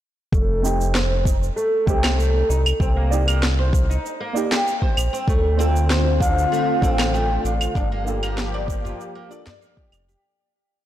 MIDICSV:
0, 0, Header, 1, 8, 480
1, 0, Start_track
1, 0, Tempo, 618557
1, 259, Time_signature, 4, 2, 24, 8
1, 8420, End_track
2, 0, Start_track
2, 0, Title_t, "Bansuri"
2, 0, Program_c, 0, 73
2, 4816, Note_on_c, 0, 77, 102
2, 5537, Note_on_c, 0, 79, 102
2, 5548, Note_off_c, 0, 77, 0
2, 5773, Note_off_c, 0, 79, 0
2, 5778, Note_on_c, 0, 77, 90
2, 6467, Note_off_c, 0, 77, 0
2, 8420, End_track
3, 0, Start_track
3, 0, Title_t, "Synth stab"
3, 0, Program_c, 1, 62
3, 480, Note_on_c, 1, 57, 79
3, 488, Note_on_c, 1, 60, 72
3, 500, Note_on_c, 1, 63, 74
3, 509, Note_on_c, 1, 67, 84
3, 1422, Note_off_c, 1, 57, 0
3, 1426, Note_off_c, 1, 60, 0
3, 1432, Note_off_c, 1, 63, 0
3, 1437, Note_off_c, 1, 67, 0
3, 1444, Note_on_c, 1, 57, 71
3, 1453, Note_on_c, 1, 60, 68
3, 1463, Note_on_c, 1, 63, 67
3, 1473, Note_on_c, 1, 67, 85
3, 2158, Note_off_c, 1, 57, 0
3, 2162, Note_off_c, 1, 60, 0
3, 2167, Note_off_c, 1, 63, 0
3, 2172, Note_off_c, 1, 67, 0
3, 2404, Note_on_c, 1, 58, 85
3, 2412, Note_on_c, 1, 74, 71
3, 2423, Note_on_c, 1, 63, 80
3, 2436, Note_on_c, 1, 67, 84
3, 3344, Note_off_c, 1, 58, 0
3, 3348, Note_off_c, 1, 74, 0
3, 3353, Note_off_c, 1, 63, 0
3, 3360, Note_off_c, 1, 67, 0
3, 3362, Note_on_c, 1, 58, 80
3, 3370, Note_on_c, 1, 74, 78
3, 3381, Note_on_c, 1, 63, 77
3, 3392, Note_on_c, 1, 67, 86
3, 4077, Note_off_c, 1, 58, 0
3, 4081, Note_off_c, 1, 74, 0
3, 4086, Note_off_c, 1, 63, 0
3, 4091, Note_off_c, 1, 67, 0
3, 4321, Note_on_c, 1, 60, 80
3, 4331, Note_on_c, 1, 62, 79
3, 4342, Note_on_c, 1, 65, 74
3, 4351, Note_on_c, 1, 69, 96
3, 5262, Note_off_c, 1, 60, 0
3, 5268, Note_off_c, 1, 62, 0
3, 5273, Note_off_c, 1, 65, 0
3, 5277, Note_off_c, 1, 69, 0
3, 5284, Note_on_c, 1, 60, 79
3, 5294, Note_on_c, 1, 62, 72
3, 5303, Note_on_c, 1, 65, 68
3, 5314, Note_on_c, 1, 69, 85
3, 5997, Note_off_c, 1, 60, 0
3, 6003, Note_off_c, 1, 62, 0
3, 6007, Note_off_c, 1, 65, 0
3, 6013, Note_off_c, 1, 69, 0
3, 6242, Note_on_c, 1, 58, 79
3, 6254, Note_on_c, 1, 62, 74
3, 6264, Note_on_c, 1, 65, 78
3, 6274, Note_on_c, 1, 69, 88
3, 7183, Note_off_c, 1, 58, 0
3, 7189, Note_off_c, 1, 62, 0
3, 7194, Note_off_c, 1, 65, 0
3, 7199, Note_off_c, 1, 69, 0
3, 7202, Note_on_c, 1, 58, 87
3, 7215, Note_on_c, 1, 62, 80
3, 7223, Note_on_c, 1, 65, 82
3, 7233, Note_on_c, 1, 69, 93
3, 7917, Note_off_c, 1, 58, 0
3, 7923, Note_off_c, 1, 62, 0
3, 7927, Note_off_c, 1, 65, 0
3, 7932, Note_off_c, 1, 69, 0
3, 8420, End_track
4, 0, Start_track
4, 0, Title_t, "Oud"
4, 0, Program_c, 2, 24
4, 258, Note_on_c, 2, 57, 72
4, 487, Note_off_c, 2, 57, 0
4, 495, Note_on_c, 2, 60, 88
4, 726, Note_off_c, 2, 60, 0
4, 732, Note_on_c, 2, 72, 93
4, 854, Note_off_c, 2, 72, 0
4, 973, Note_on_c, 2, 63, 69
4, 1047, Note_off_c, 2, 63, 0
4, 1212, Note_on_c, 2, 57, 74
4, 1444, Note_off_c, 2, 57, 0
4, 1454, Note_on_c, 2, 60, 95
4, 1685, Note_off_c, 2, 60, 0
4, 1691, Note_on_c, 2, 57, 72
4, 1923, Note_off_c, 2, 57, 0
4, 1932, Note_on_c, 2, 63, 69
4, 2007, Note_off_c, 2, 63, 0
4, 2173, Note_on_c, 2, 60, 89
4, 2247, Note_off_c, 2, 60, 0
4, 2300, Note_on_c, 2, 58, 68
4, 2530, Note_off_c, 2, 58, 0
4, 2541, Note_on_c, 2, 58, 86
4, 2652, Note_off_c, 2, 58, 0
4, 2783, Note_on_c, 2, 72, 72
4, 3011, Note_off_c, 2, 72, 0
4, 3022, Note_on_c, 2, 63, 67
4, 3251, Note_off_c, 2, 63, 0
4, 3263, Note_on_c, 2, 58, 74
4, 3491, Note_off_c, 2, 58, 0
4, 3501, Note_on_c, 2, 67, 100
4, 3568, Note_off_c, 2, 67, 0
4, 3741, Note_on_c, 2, 72, 68
4, 3970, Note_off_c, 2, 72, 0
4, 3981, Note_on_c, 2, 60, 70
4, 4086, Note_off_c, 2, 60, 0
4, 4097, Note_on_c, 2, 57, 76
4, 4326, Note_off_c, 2, 57, 0
4, 4335, Note_on_c, 2, 60, 96
4, 4566, Note_off_c, 2, 60, 0
4, 4575, Note_on_c, 2, 72, 99
4, 4696, Note_off_c, 2, 72, 0
4, 4816, Note_on_c, 2, 62, 72
4, 4889, Note_off_c, 2, 62, 0
4, 5059, Note_on_c, 2, 57, 77
4, 5288, Note_off_c, 2, 57, 0
4, 5301, Note_on_c, 2, 60, 95
4, 5529, Note_off_c, 2, 60, 0
4, 5540, Note_on_c, 2, 57, 82
4, 5768, Note_off_c, 2, 57, 0
4, 5783, Note_on_c, 2, 62, 76
4, 5852, Note_off_c, 2, 62, 0
4, 6023, Note_on_c, 2, 62, 92
4, 6093, Note_off_c, 2, 62, 0
4, 6145, Note_on_c, 2, 58, 75
4, 6372, Note_off_c, 2, 58, 0
4, 6384, Note_on_c, 2, 58, 93
4, 6493, Note_off_c, 2, 58, 0
4, 6627, Note_on_c, 2, 74, 76
4, 6853, Note_off_c, 2, 74, 0
4, 6866, Note_on_c, 2, 65, 71
4, 7093, Note_off_c, 2, 65, 0
4, 7104, Note_on_c, 2, 58, 76
4, 7207, Note_off_c, 2, 58, 0
4, 7222, Note_on_c, 2, 74, 72
4, 7334, Note_off_c, 2, 74, 0
4, 7344, Note_on_c, 2, 74, 108
4, 7447, Note_off_c, 2, 74, 0
4, 7460, Note_on_c, 2, 58, 82
4, 7531, Note_off_c, 2, 58, 0
4, 7587, Note_on_c, 2, 67, 72
4, 7695, Note_off_c, 2, 67, 0
4, 7827, Note_on_c, 2, 67, 77
4, 7934, Note_off_c, 2, 67, 0
4, 8420, End_track
5, 0, Start_track
5, 0, Title_t, "Analog synth pad"
5, 0, Program_c, 3, 89
5, 4097, Note_on_c, 3, 65, 89
5, 4098, Note_on_c, 3, 60, 82
5, 4100, Note_on_c, 3, 50, 86
5, 5999, Note_off_c, 3, 60, 0
5, 5999, Note_off_c, 3, 65, 0
5, 6000, Note_off_c, 3, 50, 0
5, 6020, Note_on_c, 3, 67, 95
5, 6023, Note_on_c, 3, 58, 79
5, 6025, Note_on_c, 3, 53, 85
5, 7920, Note_off_c, 3, 67, 0
5, 7922, Note_off_c, 3, 58, 0
5, 7923, Note_off_c, 3, 53, 0
5, 8420, End_track
6, 0, Start_track
6, 0, Title_t, "Analog synth bass"
6, 0, Program_c, 4, 38
6, 251, Note_on_c, 4, 29, 98
6, 1167, Note_off_c, 4, 29, 0
6, 1452, Note_on_c, 4, 36, 93
6, 1888, Note_off_c, 4, 36, 0
6, 1935, Note_on_c, 4, 36, 94
6, 2117, Note_off_c, 4, 36, 0
6, 2171, Note_on_c, 4, 36, 97
6, 3087, Note_off_c, 4, 36, 0
6, 3856, Note_on_c, 4, 34, 81
6, 3950, Note_off_c, 4, 34, 0
6, 4096, Note_on_c, 4, 38, 102
6, 5010, Note_off_c, 4, 38, 0
6, 5293, Note_on_c, 4, 33, 97
6, 5728, Note_off_c, 4, 33, 0
6, 5777, Note_on_c, 4, 33, 93
6, 5958, Note_off_c, 4, 33, 0
6, 6015, Note_on_c, 4, 31, 98
6, 6929, Note_off_c, 4, 31, 0
6, 7700, Note_on_c, 4, 29, 92
6, 7880, Note_off_c, 4, 29, 0
6, 8420, End_track
7, 0, Start_track
7, 0, Title_t, "Udu"
7, 6866, Note_on_c, 9, 64, 74
7, 6944, Note_off_c, 9, 64, 0
7, 7347, Note_on_c, 9, 64, 88
7, 7424, Note_off_c, 9, 64, 0
7, 8420, End_track
8, 0, Start_track
8, 0, Title_t, "Drums"
8, 253, Note_on_c, 9, 36, 103
8, 264, Note_on_c, 9, 82, 30
8, 330, Note_off_c, 9, 36, 0
8, 342, Note_off_c, 9, 82, 0
8, 505, Note_on_c, 9, 82, 71
8, 582, Note_off_c, 9, 82, 0
8, 628, Note_on_c, 9, 82, 42
8, 706, Note_off_c, 9, 82, 0
8, 736, Note_on_c, 9, 38, 73
8, 742, Note_on_c, 9, 82, 29
8, 813, Note_off_c, 9, 38, 0
8, 820, Note_off_c, 9, 82, 0
8, 973, Note_on_c, 9, 36, 95
8, 984, Note_on_c, 9, 82, 72
8, 1051, Note_off_c, 9, 36, 0
8, 1061, Note_off_c, 9, 82, 0
8, 1110, Note_on_c, 9, 82, 38
8, 1188, Note_off_c, 9, 82, 0
8, 1222, Note_on_c, 9, 82, 32
8, 1300, Note_off_c, 9, 82, 0
8, 1453, Note_on_c, 9, 36, 93
8, 1461, Note_on_c, 9, 82, 70
8, 1531, Note_off_c, 9, 36, 0
8, 1539, Note_off_c, 9, 82, 0
8, 1583, Note_on_c, 9, 38, 73
8, 1583, Note_on_c, 9, 75, 57
8, 1589, Note_on_c, 9, 82, 39
8, 1661, Note_off_c, 9, 38, 0
8, 1661, Note_off_c, 9, 75, 0
8, 1667, Note_off_c, 9, 82, 0
8, 1705, Note_on_c, 9, 82, 30
8, 1783, Note_off_c, 9, 82, 0
8, 1945, Note_on_c, 9, 82, 68
8, 2023, Note_off_c, 9, 82, 0
8, 2065, Note_on_c, 9, 75, 60
8, 2071, Note_on_c, 9, 82, 42
8, 2142, Note_off_c, 9, 75, 0
8, 2149, Note_off_c, 9, 82, 0
8, 2173, Note_on_c, 9, 36, 105
8, 2186, Note_on_c, 9, 82, 32
8, 2251, Note_off_c, 9, 36, 0
8, 2264, Note_off_c, 9, 82, 0
8, 2424, Note_on_c, 9, 82, 77
8, 2502, Note_off_c, 9, 82, 0
8, 2544, Note_on_c, 9, 75, 54
8, 2550, Note_on_c, 9, 82, 43
8, 2621, Note_off_c, 9, 75, 0
8, 2628, Note_off_c, 9, 82, 0
8, 2661, Note_on_c, 9, 38, 73
8, 2668, Note_on_c, 9, 82, 29
8, 2739, Note_off_c, 9, 38, 0
8, 2745, Note_off_c, 9, 82, 0
8, 2895, Note_on_c, 9, 36, 100
8, 2907, Note_on_c, 9, 82, 80
8, 2972, Note_off_c, 9, 36, 0
8, 2984, Note_off_c, 9, 82, 0
8, 3034, Note_on_c, 9, 82, 39
8, 3111, Note_off_c, 9, 82, 0
8, 3150, Note_on_c, 9, 82, 34
8, 3228, Note_off_c, 9, 82, 0
8, 3388, Note_on_c, 9, 82, 75
8, 3465, Note_off_c, 9, 82, 0
8, 3507, Note_on_c, 9, 38, 75
8, 3514, Note_on_c, 9, 82, 44
8, 3585, Note_off_c, 9, 38, 0
8, 3591, Note_off_c, 9, 82, 0
8, 3628, Note_on_c, 9, 82, 33
8, 3705, Note_off_c, 9, 82, 0
8, 3740, Note_on_c, 9, 36, 62
8, 3818, Note_off_c, 9, 36, 0
8, 3858, Note_on_c, 9, 75, 58
8, 3865, Note_on_c, 9, 82, 74
8, 3936, Note_off_c, 9, 75, 0
8, 3942, Note_off_c, 9, 82, 0
8, 3992, Note_on_c, 9, 82, 42
8, 4069, Note_off_c, 9, 82, 0
8, 4095, Note_on_c, 9, 36, 120
8, 4106, Note_on_c, 9, 82, 33
8, 4172, Note_off_c, 9, 36, 0
8, 4184, Note_off_c, 9, 82, 0
8, 4349, Note_on_c, 9, 82, 73
8, 4427, Note_off_c, 9, 82, 0
8, 4471, Note_on_c, 9, 82, 41
8, 4549, Note_off_c, 9, 82, 0
8, 4580, Note_on_c, 9, 38, 73
8, 4587, Note_on_c, 9, 82, 33
8, 4658, Note_off_c, 9, 38, 0
8, 4664, Note_off_c, 9, 82, 0
8, 4815, Note_on_c, 9, 36, 100
8, 4828, Note_on_c, 9, 82, 79
8, 4892, Note_off_c, 9, 36, 0
8, 4906, Note_off_c, 9, 82, 0
8, 4954, Note_on_c, 9, 82, 43
8, 5031, Note_off_c, 9, 82, 0
8, 5071, Note_on_c, 9, 82, 34
8, 5148, Note_off_c, 9, 82, 0
8, 5294, Note_on_c, 9, 36, 104
8, 5306, Note_on_c, 9, 82, 79
8, 5372, Note_off_c, 9, 36, 0
8, 5384, Note_off_c, 9, 82, 0
8, 5426, Note_on_c, 9, 38, 76
8, 5426, Note_on_c, 9, 75, 58
8, 5433, Note_on_c, 9, 82, 43
8, 5504, Note_off_c, 9, 38, 0
8, 5504, Note_off_c, 9, 75, 0
8, 5510, Note_off_c, 9, 82, 0
8, 5547, Note_on_c, 9, 82, 35
8, 5625, Note_off_c, 9, 82, 0
8, 5786, Note_on_c, 9, 82, 76
8, 5864, Note_off_c, 9, 82, 0
8, 5904, Note_on_c, 9, 75, 54
8, 5911, Note_on_c, 9, 82, 45
8, 5982, Note_off_c, 9, 75, 0
8, 5988, Note_off_c, 9, 82, 0
8, 6016, Note_on_c, 9, 36, 106
8, 6025, Note_on_c, 9, 82, 31
8, 6093, Note_off_c, 9, 36, 0
8, 6102, Note_off_c, 9, 82, 0
8, 6265, Note_on_c, 9, 82, 73
8, 6343, Note_off_c, 9, 82, 0
8, 6385, Note_on_c, 9, 75, 50
8, 6392, Note_on_c, 9, 82, 42
8, 6463, Note_off_c, 9, 75, 0
8, 6469, Note_off_c, 9, 82, 0
8, 6502, Note_on_c, 9, 38, 69
8, 6508, Note_on_c, 9, 82, 33
8, 6579, Note_off_c, 9, 38, 0
8, 6586, Note_off_c, 9, 82, 0
8, 6737, Note_on_c, 9, 36, 105
8, 6750, Note_on_c, 9, 82, 80
8, 6814, Note_off_c, 9, 36, 0
8, 6827, Note_off_c, 9, 82, 0
8, 6874, Note_on_c, 9, 82, 46
8, 6952, Note_off_c, 9, 82, 0
8, 6990, Note_on_c, 9, 82, 33
8, 7068, Note_off_c, 9, 82, 0
8, 7230, Note_on_c, 9, 82, 77
8, 7307, Note_off_c, 9, 82, 0
8, 7345, Note_on_c, 9, 38, 72
8, 7352, Note_on_c, 9, 82, 41
8, 7423, Note_off_c, 9, 38, 0
8, 7429, Note_off_c, 9, 82, 0
8, 7466, Note_on_c, 9, 82, 35
8, 7544, Note_off_c, 9, 82, 0
8, 7583, Note_on_c, 9, 36, 65
8, 7661, Note_off_c, 9, 36, 0
8, 7700, Note_on_c, 9, 75, 56
8, 7706, Note_on_c, 9, 82, 77
8, 7777, Note_off_c, 9, 75, 0
8, 7784, Note_off_c, 9, 82, 0
8, 7832, Note_on_c, 9, 82, 46
8, 7910, Note_off_c, 9, 82, 0
8, 8420, End_track
0, 0, End_of_file